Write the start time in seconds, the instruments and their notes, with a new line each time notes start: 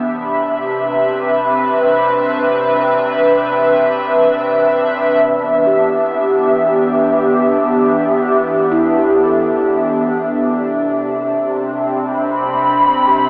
Already playing: analog synth pad D4 G4 E5
0.02 sub bass C2, analog synth pad C3, glass harmonica B5
0.57 analog synth pad B4
0.65 analog synth pad C4
5.24 sub bass E2, analog synth pad E3
5.34 analog synth pad B3
5.51 analog synth pad G4
5.67 handpan G4
8.72 handpan E4
8.98 handpan G4
9.25 handpan A4
10.47 sub bass C2, analog synth pad C3
10.93 analog synth pad C4
11.90 analog synth pad B5
13.07 handpan G4